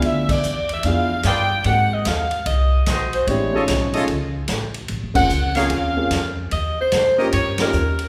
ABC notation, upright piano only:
X:1
M:4/4
L:1/8
Q:"Swing" 1/4=148
K:Bbm
V:1 name="Upright piano"
[_C=D_F=FA]2 z2 [=B,D_F=FA] z3 | [B,CEGA] z6 z | [^G,C=D_F=G] [=A,^CE=F^G]2 [A,CEFG] z4 | z [B,CDFA] z [B,CDFA]2 [B,CDFA] z2 |
z3 [B,DEF=G] z [B,DEFG] z2 |]